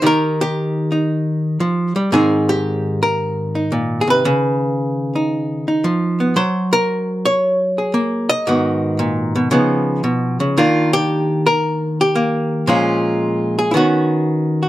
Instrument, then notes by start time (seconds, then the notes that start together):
hollow-body jazz guitar
0.02 D#3 D#4 G4
0.06 A#4
0.41 G4
0.92 D#4
1.60 F3
1.96 G3
2.12 G#2 D#3 C4 D#4 G#4
2.49 G4
3.03 A#4
3.55 D#4
3.72 A#2
4.01 G#4
4.07 C3 B4
4.25 C#3
5.15 D#4
5.68 D#4
5.84 F3
6.20 B3
6.36 F#3 C5
6.73 A#4
7.25 C#5
7.78 G#4
7.94 A#3
8.29 D#5
8.47 G#2 D#3 B3 F#4
8.99 A#2
9.36 B2
9.51 C#3 F3 B3 D#4
10.04 B2
10.40 C#3
10.57 D#3 A#3 D4 F4
10.93 G4
11.46 A#4
12.01 G4
12.15 A#3
12.67 A#2 F3 G#3 C#4 F4
13.59 G#4
13.71 D#3 B3 E4
13.75 C#4 F#4
14.63 F#4